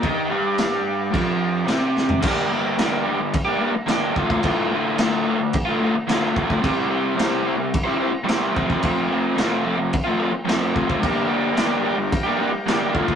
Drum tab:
CC |x---x---x---x---|x---x---x---x---|x---x---x---x---|x---x---x---x---|
SD |----o-------o-o-|----o-------o---|----o-------o---|----o-------o---|
FT |---------------o|----------------|----------------|----------------|
BD |o-------o-------|o-------o-----oo|o-------o-----oo|o-------o-----oo|

CC |x---x---x---x---|x---x---x---x---|
SD |----o-------o---|----o-------o---|
FT |----------------|----------------|
BD |o-------o-----oo|o-------o-----oo|